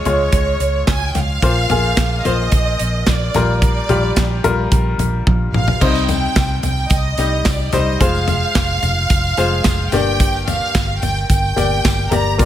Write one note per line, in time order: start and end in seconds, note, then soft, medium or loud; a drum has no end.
0.00 1.45 C#3 medium
0.00 0.06 G#3 medium
0.00 0.06 F4 medium
0.00 0.06 C#5 medium
0.00 0.85 C#5 medium
0.00 1.45 D#5 medium
0.05 0.28 C#2 medium
0.05 0.88 G#3 medium
0.05 0.88 F4 medium
0.05 0.88 C#5 medium
0.05 closed hi-hat medium
0.05 floor tom soft
0.32 0.55 C#2 loud
0.32 kick loud
0.32 closed hi-hat medium
0.60 0.83 C#2 medium
0.60 closed hi-hat medium
0.87 1.10 C#2 medium
0.87 kick loud
0.87 snare medium
0.87 clap medium
0.87 closed hi-hat medium
0.91 1.10 G#5 medium
1.09 1.16 G5 medium
1.15 1.38 C#2 medium
1.15 2.26 F5 loud
1.15 snare soft
1.15 closed hi-hat medium
1.15 floor tom medium
1.42 1.65 A#1 loud
1.42 2.21 A#2 medium
1.42 1.63 A#3 medium
1.42 1.63 F4 medium
1.42 1.63 C5 medium
1.42 kick loud
1.42 closed hi-hat medium
1.70 1.93 A#1 medium
1.70 2.11 A#3 medium
1.70 2.11 F4 medium
1.70 2.12 G#4 medium
1.70 closed hi-hat soft
1.70 floor tom medium
1.97 2.20 A#1 medium
1.97 kick loud
1.97 snare loud
1.97 clap medium
1.97 closed hi-hat loud
2.25 2.48 A#1 medium
2.25 3.07 A#3 medium
2.25 3.07 F4 medium
2.25 3.07 C5 medium
2.25 3.08 D#5 medium
2.25 closed hi-hat medium
2.25 floor tom medium
2.52 2.75 A#1 medium
2.52 kick loud
2.52 closed hi-hat medium
2.79 3.02 A#1 medium
2.79 closed hi-hat medium
3.06 3.30 A#1 medium
3.06 3.61 D5 medium
3.06 kick medium
3.06 snare loud
3.06 clap medium
3.06 closed hi-hat medium
3.34 3.80 A#1 medium
3.34 4.13 A#2 medium
3.34 3.79 G3 medium
3.34 3.79 F4 medium
3.34 3.79 A#4 medium
3.34 snare soft
3.34 closed hi-hat medium
3.34 floor tom medium
3.62 4.40 D5 medium
3.62 kick loud
3.62 closed hi-hat medium
3.89 4.12 A#1 loud
3.89 4.30 G3 medium
3.89 4.30 F4 medium
3.89 4.30 G4 medium
3.89 closed hi-hat soft
3.89 floor tom medium
4.16 4.39 A#1 medium
4.16 kick loud
4.16 snare loud
4.16 clap medium
4.16 closed hi-hat medium
4.44 4.66 A#1 loud
4.44 5.26 G3 medium
4.44 5.26 F4 medium
4.44 5.26 A#4 medium
4.44 closed hi-hat medium
4.44 floor tom medium
4.72 4.94 A#1 medium
4.72 kick loud
4.72 closed hi-hat medium
4.98 5.21 A#1 loud
4.98 closed hi-hat medium
4.98 floor tom medium
5.27 5.49 A#1 medium
5.27 kick loud
5.27 high tom soft
5.52 5.75 A#1 medium
5.52 5.80 F5 medium
5.52 mid tom medium
5.68 floor tom medium
5.81 6.26 C2 loud
5.81 6.60 C3 medium
5.81 6.63 G3 medium
5.81 6.63 D#4 medium
5.81 6.63 C5 medium
5.81 6.09 D#5 medium
5.81 kick loud
5.81 crash medium
5.95 tambourine medium
6.08 6.60 G5 medium
6.08 closed hi-hat soft
6.08 floor tom medium
6.08 tambourine medium
6.36 6.59 C2 medium
6.36 kick loud
6.36 snare loud
6.36 clap medium
6.36 closed hi-hat medium
6.36 tambourine medium
6.63 6.86 C2 loud
6.63 6.90 G5 medium
6.63 closed hi-hat medium
6.63 floor tom medium
6.63 tambourine soft
6.77 tambourine soft
6.90 7.13 C2 medium
6.90 7.46 D#5 medium
6.90 kick loud
6.90 closed hi-hat medium
6.90 tambourine medium
7.18 7.41 C2 medium
7.18 7.59 G3 medium
7.18 7.59 D#4 soft
7.18 7.60 G4 medium
7.18 closed hi-hat medium
7.18 tambourine soft
7.45 7.68 C2 loud
7.45 7.75 D5 medium
7.45 kick loud
7.45 snare loud
7.45 clap medium
7.45 closed hi-hat medium
7.45 tambourine medium
7.60 tambourine soft
7.72 7.96 C2 medium
7.72 7.94 G3 medium
7.72 7.94 D#4 medium
7.72 7.94 C5 medium
7.72 8.01 D#5 medium
7.72 snare soft
7.72 closed hi-hat medium
7.72 floor tom medium
7.72 tambourine soft
8.01 8.46 F1 loud
8.01 8.83 G#3 medium
8.01 8.83 F4 medium
8.01 8.83 C5 medium
8.01 9.89 F5 loud
8.01 kick loud
8.01 closed hi-hat medium
8.15 tambourine soft
8.28 closed hi-hat soft
8.28 floor tom medium
8.28 tambourine medium
8.42 tambourine soft
8.55 8.78 F1 loud
8.55 kick loud
8.55 snare loud
8.55 clap medium
8.55 closed hi-hat medium
8.55 tambourine medium
8.83 9.05 F1 loud
8.83 closed hi-hat medium
8.83 floor tom medium
8.83 tambourine medium
9.10 9.33 F1 medium
9.10 kick loud
9.10 closed hi-hat medium
9.10 tambourine medium
9.24 tambourine soft
9.37 9.60 F1 medium
9.37 9.79 G#3 medium
9.37 9.79 F4 medium
9.37 9.79 C5 medium
9.37 closed hi-hat medium
9.37 tambourine soft
9.64 9.88 F1 medium
9.64 kick loud
9.64 snare loud
9.64 clap medium
9.64 closed hi-hat medium
9.64 tambourine medium
9.92 10.60 G1 medium
9.92 10.71 G2 medium
9.92 10.80 A#3 medium
9.92 10.81 G4 medium
9.92 10.81 D5 medium
9.92 10.48 G5 loud
9.92 snare soft
9.92 closed hi-hat medium
9.92 floor tom medium
9.92 tambourine soft
10.20 kick loud
10.20 closed hi-hat medium
10.33 tambourine medium
10.48 10.99 F5 loud
10.48 closed hi-hat medium
10.48 floor tom medium
10.48 tambourine medium
10.61 tambourine soft
10.75 10.97 G1 medium
10.75 kick loud
10.75 snare loud
10.75 clap medium
10.75 closed hi-hat loud
10.75 tambourine medium
11.02 11.25 G1 loud
11.02 11.29 G5 medium
11.02 closed hi-hat medium
11.02 floor tom medium
11.02 tambourine medium
11.17 tambourine soft
11.30 11.52 G1 loud
11.30 12.08 G5 loud
11.30 kick loud
11.30 closed hi-hat medium
11.30 tambourine medium
11.44 tambourine soft
11.56 11.79 G1 medium
11.56 11.98 A#3 medium
11.56 11.98 G4 medium
11.56 11.98 D5 medium
11.56 closed hi-hat medium
11.56 floor tom medium
11.56 tambourine soft
11.85 12.07 G1 loud
11.85 kick loud
11.85 snare loud
11.85 clap medium
11.85 closed hi-hat medium
11.85 tambourine medium
11.98 tambourine soft
12.11 12.39 G1 medium
12.11 12.32 A#3 medium
12.11 12.32 G4 medium
12.11 12.33 D5 medium
12.11 12.40 A#5 medium
12.11 closed hi-hat medium
12.11 floor tom medium
12.11 tambourine soft
12.38 12.45 A#1 loud
12.38 12.45 A#2 medium
12.38 12.45 A#3 medium
12.38 12.45 F4 medium
12.38 12.45 D5 medium
12.38 12.45 A#5 loud
12.38 kick loud
12.38 closed hi-hat medium